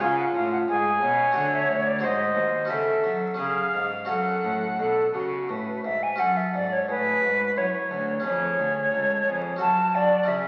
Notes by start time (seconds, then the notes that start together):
Already playing: B3 F4
0.00 C#3 F4 C#5 G#5
0.19 F#5
0.35 A2 F5
0.52 F#5
0.68 G#2 G#4 G#5
1.01 B2 C#5
1.31 A3 F#4 A4 F#5
1.36 D3
1.53 E5
1.69 D2
1.87 D5
1.99 C4 F#4 G#4
2.03 G#2 C5 D#5
2.35 D#2
2.65 C#4 F#4 A4
2.69 C#3 A4 E5
3.04 F#3
3.34 C#4 G#4 B4
3.39 C#3 G#4 F5
3.74 G#2
4.05 F#2 C#4 F#4 A4 F#5
4.09 F#2
4.44 A2
4.78 B2 A4
5.13 C#3 F#4
5.49 A2 B4
5.84 G#2 E5
6.03 G#5
6.16 F#2 C#4 F#4 A4 F#5
6.20 F#2 A4
6.37 E5
6.54 G#2 D5
6.72 C#5
6.88 A2 G#4 B4
7.22 G#2 F#4
7.56 F#2 E4 C#5
7.90 D2 F#4
8.20 F2 C#4 G#4 B4
8.24 F2 G#4 C#5
8.58 D2
8.92 C#2 A4
9.26 F2 G#4
9.56 F#2 C#4 F#4 A4
9.61 F#2 F#4 A5
9.95 F#3 D5
10.23 C#4 E4 G#4
10.28 C#3 G#4 E5